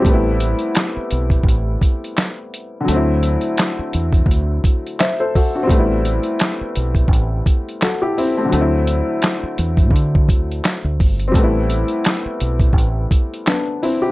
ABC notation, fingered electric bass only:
X:1
M:4/4
L:1/16
Q:"Swing 16ths" 1/4=85
K:Ador
V:1 name="Fingered electric bass" clef=bass
A,,,3 z3 B,,,2 A,,,2 z6 | D,,3 z3 E,,2 D,,2 z6 | A,,,3 z3 B,,,2 A,,,2 z6 | D,,3 z3 E,,2 D,2 D,,2 z D,, G,,,2 |
A,,,3 z3 B,,,2 A,,,2 z6 |]